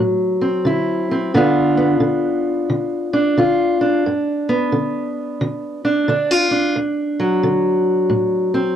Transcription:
0, 0, Header, 1, 2, 480
1, 0, Start_track
1, 0, Tempo, 677201
1, 945, Time_signature, 4, 2, 24, 8
1, 6208, End_track
2, 0, Start_track
2, 0, Title_t, "Steel-string acoustic guitar"
2, 0, Program_c, 0, 25
2, 0, Note_on_c, 0, 45, 59
2, 0, Note_on_c, 0, 54, 61
2, 294, Note_on_c, 0, 60, 54
2, 432, Note_off_c, 0, 45, 0
2, 460, Note_on_c, 0, 50, 60
2, 470, Note_on_c, 0, 64, 59
2, 772, Note_off_c, 0, 60, 0
2, 789, Note_on_c, 0, 60, 56
2, 908, Note_off_c, 0, 50, 0
2, 927, Note_off_c, 0, 64, 0
2, 933, Note_off_c, 0, 60, 0
2, 946, Note_off_c, 0, 54, 0
2, 951, Note_on_c, 0, 43, 66
2, 954, Note_on_c, 0, 50, 59
2, 960, Note_on_c, 0, 59, 58
2, 968, Note_on_c, 0, 62, 52
2, 972, Note_on_c, 0, 65, 64
2, 1255, Note_off_c, 0, 59, 0
2, 1258, Note_on_c, 0, 59, 57
2, 1394, Note_off_c, 0, 43, 0
2, 1411, Note_off_c, 0, 50, 0
2, 1419, Note_on_c, 0, 50, 62
2, 1868, Note_off_c, 0, 50, 0
2, 1911, Note_on_c, 0, 50, 61
2, 2218, Note_off_c, 0, 62, 0
2, 2221, Note_on_c, 0, 62, 59
2, 2355, Note_off_c, 0, 50, 0
2, 2389, Note_off_c, 0, 65, 0
2, 2392, Note_on_c, 0, 50, 64
2, 2398, Note_on_c, 0, 65, 61
2, 2698, Note_off_c, 0, 62, 0
2, 2701, Note_on_c, 0, 62, 55
2, 2836, Note_off_c, 0, 50, 0
2, 2850, Note_off_c, 0, 59, 0
2, 2852, Note_off_c, 0, 65, 0
2, 2879, Note_on_c, 0, 43, 69
2, 3182, Note_on_c, 0, 59, 63
2, 3319, Note_off_c, 0, 43, 0
2, 3348, Note_on_c, 0, 50, 60
2, 3793, Note_off_c, 0, 50, 0
2, 3834, Note_on_c, 0, 50, 67
2, 4141, Note_off_c, 0, 62, 0
2, 4144, Note_on_c, 0, 62, 56
2, 4276, Note_off_c, 0, 50, 0
2, 4310, Note_on_c, 0, 50, 68
2, 4316, Note_off_c, 0, 62, 0
2, 4316, Note_on_c, 0, 62, 58
2, 4472, Note_off_c, 0, 62, 0
2, 4472, Note_on_c, 0, 65, 48
2, 4615, Note_on_c, 0, 62, 56
2, 4755, Note_off_c, 0, 50, 0
2, 4771, Note_off_c, 0, 59, 0
2, 4790, Note_on_c, 0, 38, 71
2, 4793, Note_off_c, 0, 65, 0
2, 5101, Note_on_c, 0, 54, 63
2, 5234, Note_off_c, 0, 38, 0
2, 5269, Note_on_c, 0, 50, 66
2, 5713, Note_off_c, 0, 50, 0
2, 5738, Note_on_c, 0, 45, 64
2, 6051, Note_off_c, 0, 62, 0
2, 6054, Note_on_c, 0, 60, 60
2, 6187, Note_off_c, 0, 45, 0
2, 6208, Note_off_c, 0, 54, 0
2, 6208, Note_off_c, 0, 60, 0
2, 6208, End_track
0, 0, End_of_file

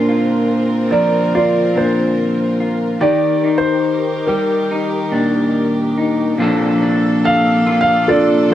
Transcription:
0, 0, Header, 1, 4, 480
1, 0, Start_track
1, 0, Key_signature, -2, "major"
1, 0, Tempo, 843882
1, 1713, Time_signature, 4, 2, 24, 8
1, 4858, End_track
2, 0, Start_track
2, 0, Title_t, "Grand piano"
2, 0, Program_c, 0, 0
2, 0, Note_on_c, 0, 62, 55
2, 0, Note_on_c, 0, 70, 74
2, 256, Note_off_c, 0, 70, 0
2, 517, Note_on_c, 0, 74, 70
2, 740, Note_off_c, 0, 62, 0
2, 759, Note_off_c, 0, 74, 0
2, 767, Note_on_c, 0, 65, 49
2, 767, Note_on_c, 0, 74, 68
2, 1008, Note_off_c, 0, 74, 0
2, 1009, Note_on_c, 0, 72, 62
2, 1458, Note_off_c, 0, 72, 0
2, 1696, Note_off_c, 0, 65, 0
2, 1712, Note_on_c, 0, 74, 77
2, 1715, Note_on_c, 0, 67, 53
2, 2010, Note_off_c, 0, 74, 0
2, 2035, Note_on_c, 0, 72, 85
2, 2410, Note_off_c, 0, 72, 0
2, 2421, Note_off_c, 0, 67, 0
2, 2425, Note_on_c, 0, 70, 57
2, 2430, Note_on_c, 0, 67, 42
2, 3368, Note_off_c, 0, 70, 0
2, 3370, Note_off_c, 0, 67, 0
2, 4126, Note_on_c, 0, 77, 83
2, 4433, Note_off_c, 0, 77, 0
2, 4441, Note_on_c, 0, 77, 81
2, 4593, Note_on_c, 0, 65, 58
2, 4594, Note_on_c, 0, 69, 60
2, 4601, Note_on_c, 0, 74, 82
2, 4602, Note_off_c, 0, 77, 0
2, 4821, Note_off_c, 0, 74, 0
2, 4834, Note_off_c, 0, 65, 0
2, 4835, Note_off_c, 0, 69, 0
2, 4858, End_track
3, 0, Start_track
3, 0, Title_t, "Clean electric guitar"
3, 0, Program_c, 1, 27
3, 0, Note_on_c, 1, 46, 58
3, 0, Note_on_c, 1, 62, 45
3, 50, Note_on_c, 1, 65, 44
3, 522, Note_on_c, 1, 53, 48
3, 527, Note_on_c, 1, 70, 47
3, 585, Note_off_c, 1, 62, 0
3, 761, Note_off_c, 1, 65, 0
3, 767, Note_on_c, 1, 65, 41
3, 989, Note_off_c, 1, 46, 0
3, 995, Note_on_c, 1, 46, 43
3, 1001, Note_on_c, 1, 62, 40
3, 1473, Note_off_c, 1, 65, 0
3, 1480, Note_on_c, 1, 65, 42
3, 1685, Note_off_c, 1, 46, 0
3, 1687, Note_off_c, 1, 65, 0
3, 1710, Note_on_c, 1, 51, 61
3, 1713, Note_off_c, 1, 70, 0
3, 1716, Note_off_c, 1, 53, 0
3, 1716, Note_on_c, 1, 67, 52
3, 1727, Note_off_c, 1, 62, 0
3, 1955, Note_on_c, 1, 63, 45
3, 2428, Note_off_c, 1, 67, 0
3, 2433, Note_on_c, 1, 55, 44
3, 2435, Note_on_c, 1, 67, 46
3, 2673, Note_off_c, 1, 63, 0
3, 2680, Note_on_c, 1, 63, 40
3, 2910, Note_on_c, 1, 46, 42
3, 2913, Note_on_c, 1, 62, 43
3, 3392, Note_off_c, 1, 63, 0
3, 3399, Note_on_c, 1, 63, 42
3, 3604, Note_off_c, 1, 51, 0
3, 3605, Note_off_c, 1, 46, 0
3, 3606, Note_off_c, 1, 55, 0
3, 3606, Note_off_c, 1, 62, 0
3, 3609, Note_off_c, 1, 63, 0
3, 3630, Note_on_c, 1, 46, 71
3, 3634, Note_on_c, 1, 53, 57
3, 3636, Note_off_c, 1, 67, 0
3, 3640, Note_on_c, 1, 62, 56
3, 3643, Note_on_c, 1, 65, 56
3, 3650, Note_on_c, 1, 69, 67
3, 3876, Note_off_c, 1, 62, 0
3, 3878, Note_on_c, 1, 62, 53
3, 4117, Note_off_c, 1, 69, 0
3, 4119, Note_on_c, 1, 69, 55
3, 4358, Note_off_c, 1, 65, 0
3, 4360, Note_on_c, 1, 65, 56
3, 4598, Note_off_c, 1, 62, 0
3, 4601, Note_on_c, 1, 62, 50
3, 4831, Note_off_c, 1, 53, 0
3, 4833, Note_on_c, 1, 53, 55
3, 4858, Note_off_c, 1, 46, 0
3, 4858, Note_off_c, 1, 53, 0
3, 4858, Note_off_c, 1, 62, 0
3, 4858, Note_off_c, 1, 65, 0
3, 4858, Note_off_c, 1, 69, 0
3, 4858, End_track
4, 0, Start_track
4, 0, Title_t, "String section"
4, 0, Program_c, 2, 48
4, 0, Note_on_c, 2, 50, 55
4, 0, Note_on_c, 2, 60, 56
4, 0, Note_on_c, 2, 65, 51
4, 0, Note_on_c, 2, 70, 69
4, 1689, Note_off_c, 2, 50, 0
4, 1691, Note_off_c, 2, 65, 0
4, 1696, Note_off_c, 2, 60, 0
4, 1697, Note_off_c, 2, 70, 0
4, 1709, Note_on_c, 2, 67, 50
4, 1709, Note_on_c, 2, 70, 63
4, 1711, Note_on_c, 2, 51, 57
4, 3613, Note_off_c, 2, 67, 0
4, 3614, Note_off_c, 2, 51, 0
4, 3614, Note_off_c, 2, 70, 0
4, 3632, Note_on_c, 2, 69, 79
4, 3633, Note_on_c, 2, 58, 64
4, 3636, Note_on_c, 2, 62, 65
4, 3639, Note_on_c, 2, 48, 76
4, 4858, Note_off_c, 2, 48, 0
4, 4858, Note_off_c, 2, 58, 0
4, 4858, Note_off_c, 2, 62, 0
4, 4858, Note_off_c, 2, 69, 0
4, 4858, End_track
0, 0, End_of_file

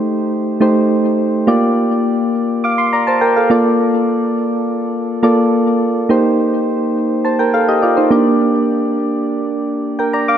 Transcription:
0, 0, Header, 1, 2, 480
1, 0, Start_track
1, 0, Key_signature, -2, "minor"
1, 0, Tempo, 576923
1, 1229, Time_signature, 4, 2, 24, 8
1, 8634, End_track
2, 0, Start_track
2, 0, Title_t, "Synth keys"
2, 0, Program_c, 0, 88
2, 0, Control_c, 0, 64, 127
2, 0, Note_on_c, 0, 57, 91
2, 0, Note_on_c, 0, 63, 85
2, 0, Note_on_c, 0, 67, 86
2, 0, Note_on_c, 0, 72, 104
2, 503, Note_off_c, 0, 57, 0
2, 503, Note_on_c, 0, 57, 84
2, 507, Note_off_c, 0, 63, 0
2, 507, Note_on_c, 0, 63, 74
2, 512, Note_off_c, 0, 67, 0
2, 512, Note_on_c, 0, 67, 78
2, 515, Note_off_c, 0, 72, 0
2, 515, Note_on_c, 0, 72, 96
2, 944, Note_off_c, 0, 57, 0
2, 946, Note_off_c, 0, 63, 0
2, 948, Note_off_c, 0, 67, 0
2, 950, Note_off_c, 0, 72, 0
2, 1224, Note_on_c, 0, 58, 81
2, 1225, Note_on_c, 0, 65, 77
2, 1230, Note_on_c, 0, 67, 76
2, 1232, Note_on_c, 0, 74, 99
2, 1239, Control_c, 0, 64, 0
2, 1389, Control_c, 0, 64, 127
2, 1811, Note_off_c, 0, 58, 0
2, 1811, Note_off_c, 0, 65, 0
2, 1813, Note_off_c, 0, 67, 0
2, 1815, Note_off_c, 0, 74, 0
2, 2196, Note_on_c, 0, 86, 65
2, 2201, Note_on_c, 0, 77, 51
2, 2307, Note_off_c, 0, 86, 0
2, 2309, Note_off_c, 0, 77, 0
2, 2313, Note_on_c, 0, 84, 68
2, 2425, Note_off_c, 0, 84, 0
2, 2436, Note_on_c, 0, 82, 70
2, 2441, Note_on_c, 0, 74, 59
2, 2547, Note_off_c, 0, 82, 0
2, 2549, Note_off_c, 0, 74, 0
2, 2554, Note_on_c, 0, 81, 72
2, 2561, Note_on_c, 0, 72, 60
2, 2666, Note_off_c, 0, 81, 0
2, 2669, Note_off_c, 0, 72, 0
2, 2672, Note_on_c, 0, 79, 73
2, 2675, Note_on_c, 0, 70, 59
2, 2785, Note_off_c, 0, 79, 0
2, 2786, Note_off_c, 0, 70, 0
2, 2799, Note_on_c, 0, 77, 63
2, 2805, Note_on_c, 0, 69, 54
2, 2908, Note_off_c, 0, 69, 0
2, 2911, Note_on_c, 0, 58, 91
2, 2914, Note_on_c, 0, 65, 90
2, 2918, Note_on_c, 0, 69, 84
2, 2921, Control_c, 0, 64, 0
2, 2921, Note_on_c, 0, 74, 103
2, 3022, Note_off_c, 0, 77, 0
2, 3079, Control_c, 0, 64, 127
2, 3678, Note_off_c, 0, 58, 0
2, 3680, Note_off_c, 0, 65, 0
2, 3682, Note_off_c, 0, 69, 0
2, 3683, Note_off_c, 0, 74, 0
2, 4349, Note_on_c, 0, 58, 84
2, 4350, Note_on_c, 0, 65, 77
2, 4353, Note_on_c, 0, 69, 79
2, 4359, Note_on_c, 0, 74, 95
2, 4787, Note_off_c, 0, 58, 0
2, 4788, Note_off_c, 0, 65, 0
2, 4789, Note_off_c, 0, 69, 0
2, 4792, Note_off_c, 0, 74, 0
2, 5069, Note_on_c, 0, 58, 83
2, 5072, Note_on_c, 0, 63, 77
2, 5076, Note_on_c, 0, 67, 81
2, 5081, Control_c, 0, 64, 0
2, 5081, Note_on_c, 0, 72, 94
2, 5200, Control_c, 0, 64, 127
2, 5653, Note_off_c, 0, 58, 0
2, 5655, Note_off_c, 0, 63, 0
2, 5657, Note_off_c, 0, 67, 0
2, 5659, Note_off_c, 0, 72, 0
2, 6029, Note_on_c, 0, 81, 60
2, 6034, Note_on_c, 0, 72, 56
2, 6143, Note_off_c, 0, 81, 0
2, 6146, Note_off_c, 0, 72, 0
2, 6150, Note_on_c, 0, 79, 71
2, 6155, Note_on_c, 0, 70, 57
2, 6263, Note_off_c, 0, 79, 0
2, 6266, Note_off_c, 0, 70, 0
2, 6271, Note_on_c, 0, 77, 71
2, 6277, Note_on_c, 0, 69, 63
2, 6384, Note_off_c, 0, 77, 0
2, 6387, Note_off_c, 0, 69, 0
2, 6394, Note_on_c, 0, 75, 76
2, 6396, Note_on_c, 0, 67, 62
2, 6506, Note_off_c, 0, 75, 0
2, 6507, Note_off_c, 0, 67, 0
2, 6509, Note_on_c, 0, 74, 70
2, 6518, Note_on_c, 0, 65, 60
2, 6623, Note_off_c, 0, 74, 0
2, 6628, Note_off_c, 0, 65, 0
2, 6630, Note_on_c, 0, 72, 64
2, 6637, Note_on_c, 0, 63, 57
2, 6743, Note_on_c, 0, 58, 95
2, 6746, Note_on_c, 0, 62, 90
2, 6751, Note_on_c, 0, 67, 84
2, 6755, Note_on_c, 0, 74, 104
2, 6761, Control_c, 0, 64, 0
2, 6858, Note_off_c, 0, 72, 0
2, 6861, Note_off_c, 0, 63, 0
2, 6906, Control_c, 0, 64, 127
2, 7514, Note_off_c, 0, 58, 0
2, 7516, Note_off_c, 0, 62, 0
2, 7518, Note_off_c, 0, 67, 0
2, 7520, Note_off_c, 0, 74, 0
2, 8310, Note_on_c, 0, 79, 61
2, 8316, Note_on_c, 0, 70, 53
2, 8424, Note_off_c, 0, 79, 0
2, 8427, Note_off_c, 0, 70, 0
2, 8431, Note_on_c, 0, 82, 67
2, 8436, Note_on_c, 0, 74, 63
2, 8544, Note_off_c, 0, 82, 0
2, 8547, Note_off_c, 0, 74, 0
2, 8555, Note_on_c, 0, 86, 75
2, 8559, Note_on_c, 0, 77, 65
2, 8634, Note_off_c, 0, 77, 0
2, 8634, Note_off_c, 0, 86, 0
2, 8634, End_track
0, 0, End_of_file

